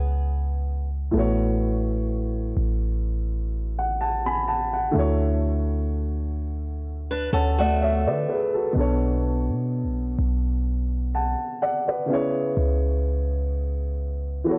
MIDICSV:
0, 0, Header, 1, 4, 480
1, 0, Start_track
1, 0, Tempo, 952381
1, 574, Time_signature, 4, 2, 24, 8
1, 7351, End_track
2, 0, Start_track
2, 0, Title_t, "Grand piano"
2, 0, Program_c, 0, 0
2, 0, Control_c, 0, 64, 127
2, 0, Note_on_c, 0, 49, 73
2, 0, Note_on_c, 0, 59, 67
2, 0, Note_on_c, 0, 64, 65
2, 0, Note_on_c, 0, 68, 67
2, 0, Note_on_c, 0, 73, 81
2, 307, Note_off_c, 0, 49, 0
2, 311, Note_off_c, 0, 59, 0
2, 316, Note_off_c, 0, 64, 0
2, 321, Note_off_c, 0, 68, 0
2, 326, Note_off_c, 0, 73, 0
2, 560, Note_on_c, 0, 45, 71
2, 570, Note_on_c, 0, 57, 69
2, 579, Note_on_c, 0, 59, 64
2, 580, Control_c, 0, 64, 0
2, 589, Note_on_c, 0, 66, 68
2, 598, Note_on_c, 0, 73, 80
2, 665, Control_c, 0, 64, 127
2, 1908, Note_on_c, 0, 78, 61
2, 2011, Note_off_c, 0, 78, 0
2, 2020, Note_on_c, 0, 81, 66
2, 2022, Note_on_c, 0, 78, 58
2, 2140, Note_off_c, 0, 81, 0
2, 2141, Note_off_c, 0, 78, 0
2, 2148, Note_on_c, 0, 83, 68
2, 2152, Note_on_c, 0, 80, 54
2, 2251, Note_off_c, 0, 83, 0
2, 2253, Note_off_c, 0, 80, 0
2, 2256, Note_on_c, 0, 81, 69
2, 2260, Note_on_c, 0, 78, 55
2, 2378, Note_off_c, 0, 78, 0
2, 2378, Note_off_c, 0, 81, 0
2, 2386, Note_on_c, 0, 78, 67
2, 2467, Note_off_c, 0, 45, 0
2, 2472, Note_off_c, 0, 57, 0
2, 2476, Note_off_c, 0, 59, 0
2, 2476, Note_on_c, 0, 50, 77
2, 2481, Note_off_c, 0, 66, 0
2, 2486, Note_off_c, 0, 73, 0
2, 2487, Note_on_c, 0, 57, 69
2, 2495, Note_on_c, 0, 64, 68
2, 2500, Control_c, 0, 64, 0
2, 2505, Note_on_c, 0, 66, 70
2, 2514, Note_on_c, 0, 73, 83
2, 2584, Control_c, 0, 64, 127
2, 2613, Note_off_c, 0, 78, 0
2, 3679, Note_off_c, 0, 66, 0
2, 3684, Note_off_c, 0, 73, 0
2, 3697, Note_on_c, 0, 81, 59
2, 3700, Note_on_c, 0, 78, 53
2, 3819, Note_off_c, 0, 81, 0
2, 3820, Note_off_c, 0, 78, 0
2, 3827, Note_on_c, 0, 78, 67
2, 3831, Note_on_c, 0, 74, 59
2, 3930, Note_off_c, 0, 78, 0
2, 3932, Note_off_c, 0, 74, 0
2, 3938, Note_on_c, 0, 76, 70
2, 3942, Note_on_c, 0, 73, 57
2, 4059, Note_off_c, 0, 76, 0
2, 4061, Note_off_c, 0, 73, 0
2, 4068, Note_on_c, 0, 74, 71
2, 4071, Note_on_c, 0, 71, 59
2, 4171, Note_off_c, 0, 71, 0
2, 4171, Note_off_c, 0, 74, 0
2, 4179, Note_on_c, 0, 71, 63
2, 4180, Note_on_c, 0, 68, 60
2, 4299, Note_off_c, 0, 71, 0
2, 4300, Note_off_c, 0, 68, 0
2, 4306, Note_on_c, 0, 69, 61
2, 4309, Note_on_c, 0, 66, 54
2, 4385, Note_off_c, 0, 50, 0
2, 4390, Note_off_c, 0, 57, 0
2, 4394, Note_off_c, 0, 64, 0
2, 4400, Note_on_c, 0, 47, 75
2, 4410, Note_on_c, 0, 59, 67
2, 4418, Note_on_c, 0, 62, 65
2, 4420, Control_c, 0, 64, 0
2, 4421, Note_off_c, 0, 69, 0
2, 4428, Note_on_c, 0, 69, 67
2, 4437, Note_on_c, 0, 73, 78
2, 4507, Control_c, 0, 64, 127
2, 4534, Note_off_c, 0, 66, 0
2, 5605, Note_off_c, 0, 73, 0
2, 5618, Note_on_c, 0, 81, 62
2, 5620, Note_on_c, 0, 78, 54
2, 5844, Note_off_c, 0, 81, 0
2, 5845, Note_off_c, 0, 78, 0
2, 5857, Note_on_c, 0, 78, 70
2, 5859, Note_on_c, 0, 74, 59
2, 5979, Note_off_c, 0, 74, 0
2, 5979, Note_off_c, 0, 78, 0
2, 5987, Note_on_c, 0, 74, 60
2, 5990, Note_on_c, 0, 71, 53
2, 6066, Note_off_c, 0, 47, 0
2, 6072, Note_off_c, 0, 59, 0
2, 6076, Note_off_c, 0, 62, 0
2, 6078, Note_on_c, 0, 49, 78
2, 6081, Note_off_c, 0, 69, 0
2, 6087, Note_on_c, 0, 59, 70
2, 6096, Note_on_c, 0, 64, 65
2, 6099, Control_c, 0, 64, 0
2, 6106, Note_on_c, 0, 68, 67
2, 6115, Note_on_c, 0, 73, 83
2, 6186, Control_c, 0, 64, 127
2, 6213, Note_off_c, 0, 74, 0
2, 6215, Note_off_c, 0, 71, 0
2, 7266, Note_off_c, 0, 49, 0
2, 7270, Note_off_c, 0, 59, 0
2, 7275, Note_off_c, 0, 64, 0
2, 7279, Note_on_c, 0, 52, 70
2, 7280, Note_off_c, 0, 68, 0
2, 7284, Note_off_c, 0, 73, 0
2, 7289, Note_on_c, 0, 59, 66
2, 7298, Note_on_c, 0, 66, 62
2, 7301, Control_c, 0, 64, 0
2, 7308, Note_on_c, 0, 69, 65
2, 7317, Note_on_c, 0, 73, 59
2, 7341, Note_off_c, 0, 73, 0
2, 7351, Note_off_c, 0, 52, 0
2, 7351, Note_off_c, 0, 59, 0
2, 7351, Note_off_c, 0, 66, 0
2, 7351, Note_off_c, 0, 69, 0
2, 7351, End_track
3, 0, Start_track
3, 0, Title_t, "Nylon-string guitar"
3, 0, Program_c, 1, 24
3, 0, Note_on_c, 1, 59, 64
3, 0, Note_on_c, 1, 68, 69
3, 443, Note_off_c, 1, 68, 0
3, 445, Note_off_c, 1, 59, 0
3, 3582, Note_on_c, 1, 71, 80
3, 3586, Note_on_c, 1, 62, 65
3, 3688, Note_off_c, 1, 71, 0
3, 3689, Note_off_c, 1, 62, 0
3, 3693, Note_on_c, 1, 69, 88
3, 3696, Note_on_c, 1, 61, 71
3, 3817, Note_off_c, 1, 69, 0
3, 3818, Note_off_c, 1, 61, 0
3, 3823, Note_on_c, 1, 66, 73
3, 3826, Note_on_c, 1, 57, 60
3, 4393, Note_off_c, 1, 66, 0
3, 4395, Note_off_c, 1, 57, 0
3, 7351, End_track
4, 0, Start_track
4, 0, Title_t, "808-style bass"
4, 0, Program_c, 2, 38
4, 0, Note_on_c, 2, 37, 97
4, 555, Note_off_c, 2, 37, 0
4, 574, Note_on_c, 2, 33, 106
4, 1274, Note_off_c, 2, 33, 0
4, 1294, Note_on_c, 2, 33, 103
4, 2474, Note_off_c, 2, 33, 0
4, 2494, Note_on_c, 2, 38, 100
4, 3674, Note_off_c, 2, 38, 0
4, 3694, Note_on_c, 2, 38, 98
4, 4063, Note_on_c, 2, 50, 99
4, 4071, Note_off_c, 2, 38, 0
4, 4168, Note_off_c, 2, 50, 0
4, 4414, Note_on_c, 2, 35, 98
4, 4784, Note_on_c, 2, 47, 96
4, 4791, Note_off_c, 2, 35, 0
4, 4959, Note_on_c, 2, 35, 98
4, 4966, Note_off_c, 2, 47, 0
4, 5125, Note_off_c, 2, 35, 0
4, 5134, Note_on_c, 2, 35, 104
4, 5723, Note_off_c, 2, 35, 0
4, 6335, Note_on_c, 2, 37, 108
4, 7274, Note_off_c, 2, 37, 0
4, 7351, End_track
0, 0, End_of_file